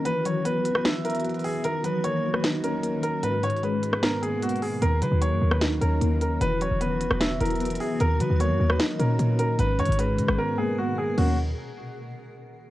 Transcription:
<<
  \new Staff \with { instrumentName = "Grand piano" } { \time 4/4 \key ees \phrygian \tempo 4 = 151 b'8 des''8 b'8. b'16 r8 bes'4 aes'8 | bes'8 ces''8 des''8. ces''16 r8 bes'4 bes'8 | ces''8 des''8 ces''8. ces''16 bes'8 aes'8 ges'8 aes'8 | bes'8 ces''8 des''8. ces''16 r8 bes'4 bes'8 |
b'8 des''8 b'8. b'16 r8 bes'4 aes'8 | bes'8 ces''8 des''8. ces''16 r8 bes'4 bes'8 | ces''8 des''8 ces''8. ces''16 bes'8 aes'8 ges'8 aes'8 | ges'8 r2. r8 | }
  \new Staff \with { instrumentName = "Ambient pad" } { \time 4/4 \key ees \phrygian << { ges'1~ | ges'1 | aes'1 | ges'1~ |
ges'1~ | ges'1 | aes'1 | r1 | } \\ { <e b>1 | <ees des'>1 | <ces bes'>1 | <ees des'>1 |
<e b>1 | <ees des'>1 | <ces bes'>1 | r1 | } >> }
  \new Staff \with { instrumentName = "Synth keys" } { \time 4/4 \key ees \phrygian e8 fis8 b4 e''8 e'8 b4 | ees8 ges8 bes4 ees'8 des'8 bes4 | aes,8 ees8 aes4 ces'8 bes8 aes4 | ees8 ges8 bes4 ees'8 des'8 bes4 |
e8 fis8 b4 e''8 e'8 b4 | ees8 ges8 bes4 ees'8 des'8 bes4 | aes,8 ees8 aes4 ces'8 bes8 aes4 | <ees ges bes des'>8 r2. r8 | }
  \new Staff \with { instrumentName = "808-style bass" } { \clef bass \time 4/4 \key ees \phrygian r1 | r1 | r1 | ees,8 ees16 ees,8 ges,16 ees,4 ees,8 ees,4 |
e,,8. e,,4 e,,8. e,,4 r8 | ees,8 ees16 ees,8 ges,16 ees,8 r8 bes,8 bes,4 | aes,,8 aes,16 aes,,8. ees16 aes,,16 r2 | ees,4 r2. | }
  \new DrumStaff \with { instrumentName = "Drums" } \drummode { \time 4/4 hh8 hh8 hh8 hh16 ss16 <hh sn>8 hh32 hh32 hh32 hh32 hh32 hh32 hh32 hh32 hho8 | hh8 hh8 hh8. ss16 <hh sn>8 hh8 hh8 hh8 | \tuplet 3/2 { hh16 r16 r16 hh16 hh16 hh16 } hh8 hh16 ss16 <hh sn>8 hh8 \tuplet 3/2 { hh16 hh16 hh16 hho16 r16 r16 } | hh8 hh8 hh8. ss16 <hh sn>8 hh8 hh8 hh8 |
hh8 hh8 hh8 hh16 ss16 <hh sn>8 hh32 hh32 hh32 hh32 hh32 hh32 hh32 hh32 hho8 | hh8 hh8 hh8. ss16 <hh sn>8 hh8 hh8 hh8 | \tuplet 3/2 { hh16 r16 r16 hh16 hh16 hh16 } hh8 hh16 ss16 r4 r4 | cymc4 r4 r4 r4 | }
>>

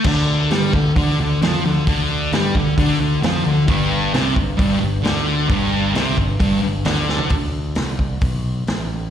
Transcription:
<<
  \new Staff \with { instrumentName = "Distorted electric guitar" } { \clef bass \time 4/4 \key g \major \tempo 4 = 132 d4 g8 d8 d8 d8 f8 d8 | d4 g8 d8 d8 d8 f8 d8 | g,4 c8 g,8 g,8 g,8 d4 | g,4 c8 g,8 g,8 g,8 d4 |
r1 | }
  \new Staff \with { instrumentName = "Fingered electric bass" } { \clef bass \time 4/4 \key g \major d,4 g,8 d,8 d,8 d,8 f,8 d,8 | d,4 g,8 d,8 d,8 d,8 f,8 d,8 | g,,4 c,8 g,,8 g,,8 g,,8 d,4 | g,,4 c,8 g,,8 g,,8 g,,8 d,4 |
d,4 c,4 b,,4 a,,4 | }
  \new DrumStaff \with { instrumentName = "Drums" } \drummode { \time 4/4 <cymc bd>4 <hho sn>8 bd8 <hho bd>4 <hho sn>4 | <hho bd>4 <hho sn>8 bd8 <hho bd>4 <hho sn>4 | <hho bd>4 <hho sn>8 bd8 <hho bd>4 <hho sn>4 | <hho bd>4 <hho sn>8 bd8 <hho bd>4 <hho sn>8 sn16 tomfh16 |
<hho bd>4 <hho sn>8 bd8 <hho bd>4 <hho sn>4 | }
>>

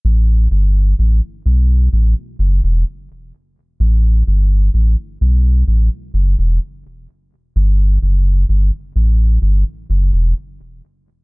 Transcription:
\new Staff \with { instrumentName = "Sub bass" } { \clef bass \time 4/4 \key a \dorian \tempo 4 = 64 a,,8 g,,8 a,,16 r16 b,,8 a,,16 r16 fis,,16 e,,16 r4 | a,,8 g,,8 a,,16 r16 b,,8 a,,16 r16 fis,,16 e,,16 r4 | g,,8 fis,,8 g,,16 r16 a,,8 g,,16 r16 fis,,16 e,,16 r4 | }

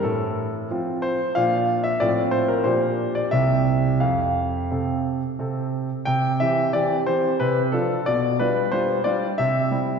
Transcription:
\new Staff \with { instrumentName = "Grand piano" } { \time 3/4 \key f \major \tempo 4 = 91 << { a'4 r8 c''8 f''8. e''16 | d''8 c''16 bes'16 c''8. d''16 e''4 | f''2~ f''8 r8 | \key c \major g''8 e''8 d''8 c''8 b'8 a'8 |
d''8 b'8 c''8 d''8 e''4 | } \\ { a,4 <f c' f'>4 <bes, f d' f'>4 | <a, f c' f'>4 <bes, f d' g'>4 <c, c c' g'>4 | f,4 <c c' a'>4 <c c' a'>4 | c8 <e c' g'>8 <e c' g'>8 <e c' g'>8 c8 <f d' f'>8 |
b,8 <g d' f'>8 <g d' f'>8 <g d' f'>8 c8 <g c' e'>8 | } >> }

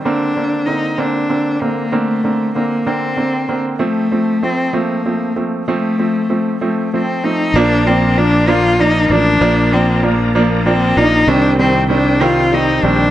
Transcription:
<<
  \new Staff \with { instrumentName = "Tonewheel organ" } { \time 6/8 \key bes \major \tempo 4. = 64 r2. | r2. | r2. | r2. |
<f' bes' d'' bes''>2.~ | <f' bes' d'' bes''>2. | <ees g' c'' g''>2. | }
  \new Staff \with { instrumentName = "Cello" } { \time 6/8 \key bes \major d'4 ees'8 d'4 bes8 | a4 bes8 c'4 r8 | a4 c'8 bes4 r8 | a4. a8 c'8 ees'8 |
d'8 c'8 d'8 f'8 ees'8 d'8~ | d'8 c'8 bes8 bes8 c'8 ees'8 | d'8 c'8 d'8 f'8 ees'8 d'8 | }
  \new Staff \with { instrumentName = "Upright piano" } { \time 6/8 \key bes \major <d bes c'>8 <d bes c'>8 <d bes c'>8 <d bes c'>8 <d bes c'>8 <d bes c'>8 | <d bes c'>8 <d bes c'>8 <d bes c'>8 <d bes c'>8 <d bes c'>8 <d bes c'>8 | <f a c'>8 <f a c'>8 <f a c'>8 <f a c'>8 <f a c'>8 <f a c'>8 | <f a c'>8 <f a c'>8 <f a c'>8 <f a c'>8 <f a c'>8 <f a c'>8 |
<f bes d'>8 <f bes d'>8 <f bes d'>8 <f bes d'>8 <f bes d'>8 <f bes d'>8 | <f bes d'>8 <f bes d'>8 <f bes d'>8 <f bes d'>8 <f bes d'>8 <f bes d'>8 | <ees g c'>8 <ees g c'>8 <ees g c'>8 <ees g c'>8 <ees g c'>8 <ees g c'>8 | }
  \new Staff \with { instrumentName = "Fretless electric bass" } { \clef bass \time 6/8 \key bes \major r2. | r2. | r2. | r2. |
bes,,2~ bes,,8 a,,8 | bes,,2~ bes,,8 bes,,8 | c,2~ c,8 bes,,8 | }
>>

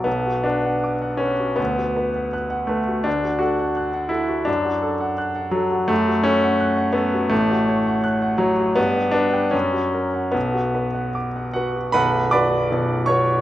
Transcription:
\new Staff \with { instrumentName = "Grand piano" } { \time 2/4 \key b \minor \tempo 4 = 81 << { b8 d'4 cis'8 | b4 r8 a8 | d'8 fis'4 e'8 | d'4 r8 fis8 |
a8 cis'4 b8 | a4 r8 fis8 | b8 d'8 cis'4 | b4 r8 <fis' fis''>8 |
<b' fis'' b''>8 <d'' b'' d'''>4 <cis'' cis'''>8 | } \\ { b,,16 fis'16 b'16 fis''16 d'''16 fis''16 b'16 fis'16 | d,16 fis'16 b'16 fis''16 fis'''16 fis''16 b'16 fis'16 | d,16 fis'16 a'16 fis''16 fis'''16 fis''16 a'16 fis'16 | fis,16 fis'16 a'16 fis''16 fis'''16 fis''16 a'16 fis'16 |
fis,16 fis'16 a'16 fis''16 fis'''16 fis''16 a'16 fis'16 | a,,16 fis'16 cis''16 fis''16 fis'''16 fis''16 cis''16 fis'16 | g,16 g'16 b'16 g''16 fis,16 fis'16 ais'16 fis''16 | b,,16 fis'16 b'16 fis''16 d'''16 fis''16 b'16 fis'16 |
<b,,, b,,>8 <b fis' b'>8 <b,,, b,,>8 <b fis' b'>8 | } >> }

